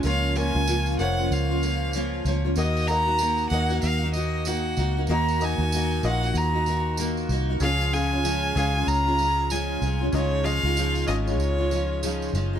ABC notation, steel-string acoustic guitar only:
X:1
M:4/4
L:1/16
Q:"Swing 16ths" 1/4=95
K:Db
V:1 name="Steel-string acoustic guitar"
[D,F,B,DF]2 [F,B,DF] [B,DF] [D,F,B,DF]2 [F,B,DF] [B,DF]2 [B,DF] [F,B,DF]2 [D,F,B,DF]2 [F,B,DF] [B,DF] | [E,B,EG]2 [E,B,EG] [B,EG] [E,B,EG]2 [E,B,EG] [B,EG]2 [B,EG] [E,B,EG]2 [E,B,EG]2 [E,B,EG] [B,EG] | [E,B,EG]2 [E,B,EG] [B,EG] [E,B,EG]2 [E,B,EG] [B,EG]2 [B,EG] [E,B,EG]2 [E,B,EG]2 [E,B,EG] [B,EG] | [D,F,A,DF]2 [F,A,DF] [A,DF] [D,F,A,DF]2 [F,A,DF] [A,DF]2 [A,DF] [F,A,DF]2 [D,F,A,DF]2 [F,A,DF] [A,DF] |
[D,F,A,EF]2 [F,A,EF] [A,EF] [D,F,A,EF]2 [F,A,EF] [A,EF]2 [A,EF] [F,A,EF]2 [D,F,A,EF]2 [F,A,EF] [A,EF] |]